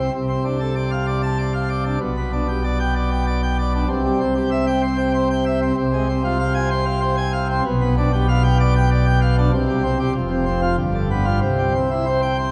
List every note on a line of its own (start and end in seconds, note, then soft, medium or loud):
0.00 0.12 C4 medium
0.14 1.98 C2 medium
0.14 1.98 C3 medium
0.29 0.43 C4 medium
0.45 0.59 D4 medium
0.60 0.74 A4 medium
0.76 0.90 D5 medium
0.91 1.06 F5 medium
1.07 1.22 D5 medium
1.23 1.37 A5 medium
1.39 1.53 D5 medium
1.54 1.68 F5 medium
1.69 1.84 D5 medium
1.85 1.99 D4 medium
2.00 3.85 B1 medium
2.00 3.85 B2 medium
2.17 2.31 B3 medium
2.32 2.47 D4 medium
2.48 2.62 G4 medium
2.64 2.78 D5 medium
2.80 2.94 G5 medium
2.95 3.09 D5 medium
3.11 3.25 G5 medium
3.27 3.41 D5 medium
3.43 3.57 G5 medium
3.59 3.72 D5 medium
3.75 3.88 D4 medium
3.88 5.72 C2 loud
3.88 5.72 C3 loud
4.04 4.18 G3 medium
4.20 4.34 C4 medium
4.35 4.49 G4 medium
4.51 4.65 E5 medium
4.67 4.81 G5 medium
4.82 4.97 C5 medium
4.97 5.12 G5 medium
5.14 5.28 C5 medium
5.31 5.44 G5 medium
5.46 5.60 E5 medium
5.62 5.75 C4 medium
5.77 7.61 C2 loud
5.77 7.61 C3 loud
5.93 6.07 G#3 medium
6.09 6.22 C4 medium
6.24 6.38 F4 medium
6.39 6.53 F5 medium
6.55 6.69 G#5 loud
6.70 6.85 C5 medium
6.86 7.00 F5 medium
7.01 7.15 C5 medium
7.17 7.31 G#5 medium
7.33 7.47 F5 medium
7.50 7.63 C4 medium
7.66 9.50 B1 loud
7.66 9.50 B2 loud
7.81 7.95 B3 medium
7.98 8.11 D4 medium
8.13 8.27 G4 medium
8.29 8.42 F5 medium
8.43 8.57 G5 loud
8.60 8.74 D5 medium
8.76 8.89 G5 loud
8.91 9.05 D5 medium
9.06 9.20 G5 medium
9.21 9.35 F5 medium
9.38 9.51 D4 medium
9.53 10.14 C2 loud
9.53 10.14 C3 loud
9.68 9.82 G3 medium
9.83 9.98 C4 medium
9.99 10.13 G4 loud
10.15 10.77 F1 medium
10.15 10.77 F2 medium
10.30 10.45 C3 medium
10.46 10.60 C4 medium
10.62 10.76 F4 loud
10.78 11.40 G1 medium
10.78 11.40 G2 loud
10.94 11.08 D3 medium
11.11 11.25 B3 medium
11.25 11.39 F4 medium
11.41 12.52 C2 medium
11.41 12.52 C3 medium
11.58 11.73 G3 medium
11.75 11.89 C4 medium
11.91 12.05 E4 medium
12.06 12.21 C5 medium
12.22 12.37 G5 medium
12.39 12.52 C5 medium